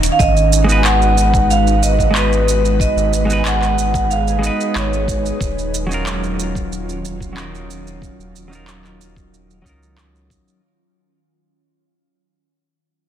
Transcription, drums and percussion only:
0.03 closed hi-hat, shaker
0.19 kick, shaker
0.37 shaker
0.53 shaker
0.69 shaker
0.84 clap, shaker
1.02 shaker
1.18 shaker
1.34 kick, shaker
1.51 shaker
1.67 shaker
1.83 shaker
1.99 kick, shaker
2.15 clap, shaker
2.33 shaker
2.48 shaker
2.65 shaker
2.80 kick, shaker
2.98 shaker
3.13 shaker
3.30 shaker
3.45 clap, shaker
3.62 clap, shaker
3.79 shaker
3.94 kick, shaker
4.11 shaker
4.28 shaker
4.44 shaker
4.61 shaker
4.76 clap, shaker
4.93 shaker
5.08 kick, shaker
5.26 shaker
5.41 kick, shaker
5.58 shaker
5.74 shaker
5.91 shaker
6.06 clap, shaker
6.24 shaker
6.40 shaker
6.55 kick, shaker
6.72 shaker
6.89 shaker
7.05 shaker
7.21 kick, shaker
7.37 clap, shaker
7.55 shaker
7.71 shaker
7.87 shaker
8.02 kick, shaker
8.20 shaker
8.36 shaker
8.53 shaker
8.67 clap, shaker
8.84 clap, shaker
9.01 shaker
9.16 kick, shaker
9.34 shaker
9.50 shaker
9.65 kick, shaker
9.83 shaker
9.98 clap, shaker
10.15 shaker
10.30 kick, shaker
10.48 shaker

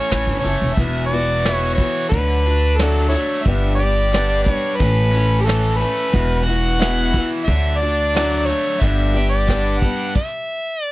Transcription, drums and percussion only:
0.11 snare, closed hi-hat
0.44 closed hi-hat
0.77 kick, closed hi-hat
1.11 closed hi-hat
1.44 snare, closed hi-hat
1.78 kick, closed hi-hat
2.12 kick, closed hi-hat
2.45 closed hi-hat
2.78 snare, closed hi-hat
3.12 closed hi-hat
3.45 kick, closed hi-hat
3.79 closed hi-hat
4.13 snare, closed hi-hat
4.46 kick, snare, closed hi-hat
4.80 kick, closed hi-hat
5.14 closed hi-hat
5.48 snare, closed hi-hat
5.81 closed hi-hat
6.14 kick, closed hi-hat
6.48 closed hi-hat
6.81 snare, closed hi-hat
7.14 kick, closed hi-hat
7.48 kick, closed hi-hat
7.82 closed hi-hat
8.15 snare, closed hi-hat
8.49 closed hi-hat
8.81 kick, closed hi-hat
9.15 closed hi-hat
9.49 kick, snare, closed hi-hat
9.81 kick, closed hi-hat
10.15 kick, crash

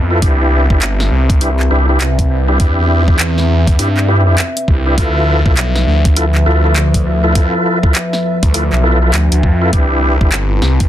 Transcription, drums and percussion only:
0.22 kick, closed hi-hat
0.70 kick
0.82 clap, closed hi-hat
1.00 snare
1.30 kick, closed hi-hat
1.41 closed hi-hat
1.60 clap
2.01 clap, closed hi-hat
2.19 kick, closed hi-hat
2.60 kick, closed hi-hat
3.08 kick
3.19 clap, closed hi-hat
3.38 snare
3.67 kick, closed hi-hat
3.79 closed hi-hat
3.97 clap
4.38 clap, closed hi-hat
4.57 closed hi-hat
4.68 kick
4.98 kick, closed hi-hat
5.46 kick
5.57 clap, closed hi-hat
5.76 snare
6.05 kick, closed hi-hat
6.16 closed hi-hat
6.35 clap
6.76 clap, closed hi-hat
6.94 kick, closed hi-hat
7.35 kick, closed hi-hat
7.83 kick
7.95 clap, closed hi-hat
8.13 snare
8.43 kick, closed hi-hat
8.54 closed hi-hat
8.73 clap
9.14 clap, closed hi-hat
9.32 closed hi-hat
9.43 kick
9.73 kick, closed hi-hat
10.21 kick
10.32 clap, closed hi-hat
10.62 snare
10.80 kick, closed hi-hat

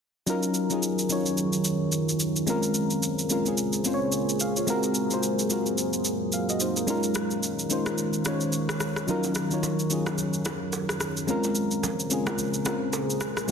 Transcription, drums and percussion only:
0.27 shaker
0.43 shaker
0.54 shaker
0.70 shaker
0.83 shaker
0.99 shaker
1.10 shaker
1.26 shaker
1.38 shaker
1.53 shaker
1.65 shaker
1.92 shaker
2.09 shaker
2.20 shaker
2.36 shaker
2.47 shaker
2.63 shaker
2.74 shaker
2.90 shaker
3.03 shaker
3.19 shaker
3.30 shaker
3.46 shaker
3.58 shaker
3.73 shaker
3.85 shaker
4.12 shaker
4.29 shaker
4.40 shaker
4.56 shaker
4.68 shaker
4.83 shaker
4.95 shaker
5.11 shaker
5.23 shaker
5.39 shaker
5.50 shaker
5.66 shaker
5.78 shaker
5.93 shaker
6.05 shaker
6.32 shaker
6.49 shaker
6.60 shaker
6.77 shaker
6.88 shaker
7.03 shaker
7.15 cross-stick, shaker
7.31 shaker
7.43 shaker
7.59 shaker
7.70 shaker
7.86 cross-stick, shaker
7.98 shaker
8.13 shaker
8.25 cross-stick, shaker
8.41 shaker
8.53 shaker
8.69 cross-stick, shaker
8.80 cross-stick, shaker
8.96 cross-stick, shaker
9.08 low conga, shaker
9.24 low bongo, shaker
9.35 cross-stick, shaker
9.51 shaker
9.63 high bongo, low conga, shaker
9.79 shaker
9.90 shaker
10.06 cross-stick, low bongo, shaker
10.18 low conga, shaker
10.33 shaker
10.45 cross-stick, high bongo, low bongo, shaker
10.73 high bongo, shaker
10.89 cross-stick, shaker
11.00 cross-stick, shaker
11.17 shaker
11.28 low conga, shaker
11.44 low bongo, shaker
11.55 shaker
11.71 shaker
11.83 high bongo, low conga, shaker
12.00 shaker
12.11 shaker
12.27 cross-stick, low bongo, shaker
12.38 low conga, shaker
12.54 shaker
12.65 cross-stick, high bongo, low bongo, shaker
12.93 high bongo, shaker
13.10 shaker
13.21 cross-stick, shaker
13.37 cross-stick, shaker

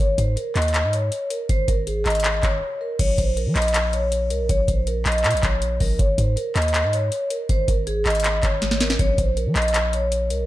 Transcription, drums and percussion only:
0.18 kick, closed hi-hat
0.37 closed hi-hat
0.56 clap, closed hi-hat
0.62 closed hi-hat
0.68 closed hi-hat
0.74 clap, closed hi-hat
0.93 closed hi-hat
1.12 closed hi-hat
1.30 closed hi-hat
1.49 kick, closed hi-hat
1.68 kick, closed hi-hat
1.87 closed hi-hat
2.06 clap, closed hi-hat
2.10 closed hi-hat
2.15 closed hi-hat
2.20 closed hi-hat
2.24 clap, closed hi-hat
2.43 kick, clap, closed hi-hat
2.99 kick, closed hi-hat, crash
3.18 kick, closed hi-hat
3.37 closed hi-hat
3.56 clap, closed hi-hat
3.62 closed hi-hat
3.68 closed hi-hat
3.74 clap, closed hi-hat
3.93 closed hi-hat
4.12 closed hi-hat
4.30 closed hi-hat
4.49 kick, closed hi-hat
4.68 kick, closed hi-hat
4.87 closed hi-hat
5.06 clap, closed hi-hat
5.12 closed hi-hat
5.18 closed hi-hat
5.24 clap, closed hi-hat
5.31 closed hi-hat
5.37 closed hi-hat
5.43 kick, clap, closed hi-hat
5.62 closed hi-hat
5.80 kick, open hi-hat
5.99 kick, closed hi-hat
6.18 kick, closed hi-hat
6.37 closed hi-hat
6.56 clap, closed hi-hat
6.62 closed hi-hat
6.68 closed hi-hat
6.74 clap, closed hi-hat
6.93 closed hi-hat
7.12 closed hi-hat
7.30 closed hi-hat
7.49 kick, closed hi-hat
7.68 kick, closed hi-hat
7.87 closed hi-hat
8.06 clap, closed hi-hat
8.10 closed hi-hat
8.15 closed hi-hat
8.20 closed hi-hat
8.24 clap, closed hi-hat
8.43 kick, clap, closed hi-hat
8.62 snare, closed hi-hat
8.71 snare
8.80 snare, closed hi-hat
8.90 snare
8.99 kick, closed hi-hat
9.18 kick, closed hi-hat
9.37 closed hi-hat
9.56 clap, closed hi-hat
9.62 closed hi-hat
9.68 closed hi-hat
9.74 clap, closed hi-hat
9.93 closed hi-hat
10.12 closed hi-hat
10.30 closed hi-hat

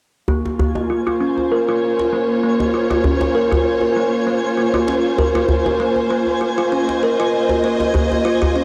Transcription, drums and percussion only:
0.28 djembe bass
0.45 djembe tone
0.59 djembe bass
0.75 djembe tone
1.07 djembe tone
1.38 djembe tone
1.99 djembe slap
2.60 djembe tone
2.91 djembe slap, djembe tone
3.04 djembe bass
3.21 djembe tone
3.52 djembe bass
3.81 djembe tone
4.74 djembe tone
4.88 djembe slap
5.18 djembe bass
5.35 djembe tone
5.49 djembe bass
5.66 djembe tone
5.96 djembe tone
6.26 djembe tone
6.89 djembe slap
7.49 djembe tone
7.80 djembe slap, djembe tone
7.95 djembe bass
8.12 djembe tone
8.42 djembe bass

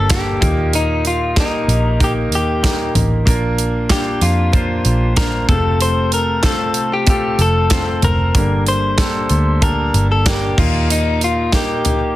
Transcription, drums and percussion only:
0.10 kick, snare, clap, closed hi-hat
0.42 kick, closed hi-hat, floor tom
0.73 closed hi-hat
1.05 closed hi-hat
1.37 kick, snare, clap, closed hi-hat
1.69 closed hi-hat
2.00 kick, closed hi-hat
2.32 closed hi-hat
2.64 kick, snare, clap, closed hi-hat
2.95 closed hi-hat, floor tom
3.27 kick, closed hi-hat
3.58 closed hi-hat
3.90 kick, snare, clap, closed hi-hat
4.21 closed hi-hat
4.53 kick, closed hi-hat
4.85 closed hi-hat
5.17 kick, snare, clap, closed hi-hat
5.49 kick, closed hi-hat, floor tom
5.81 closed hi-hat
6.12 closed hi-hat
6.43 kick, snare, clap, closed hi-hat
6.74 closed hi-hat
7.07 kick, closed hi-hat
7.39 closed hi-hat
7.70 kick, snare, clap, closed hi-hat
8.02 closed hi-hat, floor tom
8.35 kick, closed hi-hat
8.66 closed hi-hat
8.98 kick, snare, clap, closed hi-hat
9.29 closed hi-hat
9.62 kick, closed hi-hat
9.94 closed hi-hat
10.26 kick, snare, clap, closed hi-hat
10.58 kick, floor tom, crash
10.90 closed hi-hat
11.21 closed hi-hat
11.53 kick, snare, clap, closed hi-hat
11.85 closed hi-hat, floor tom

